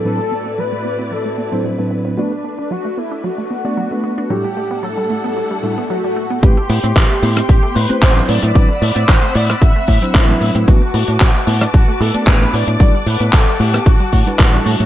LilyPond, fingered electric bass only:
\new Staff \with { instrumentName = "Fingered electric bass" } { \clef bass \time 4/4 \key a \dorian \tempo 4 = 113 r1 | r1 | r1 | a,,16 r16 a,16 a,16 a,,16 r16 a,16 r16 a,,16 r16 a,16 r16 a,,16 r16 a,16 a,16 |
a,,16 r16 a,16 a,16 a,,16 r16 a,16 r16 a,,16 r16 a,16 r16 a,,16 r16 a,16 a,16 | a,,16 r16 a,16 a,16 a,,16 r16 a,16 r16 a,,16 r16 a,16 r16 a,,16 r16 a,16 a,16 | a,,16 r16 a,16 a,16 a,,16 r16 a,16 r16 a,,16 r16 a,16 r16 a,,16 r16 a,16 a,16 | }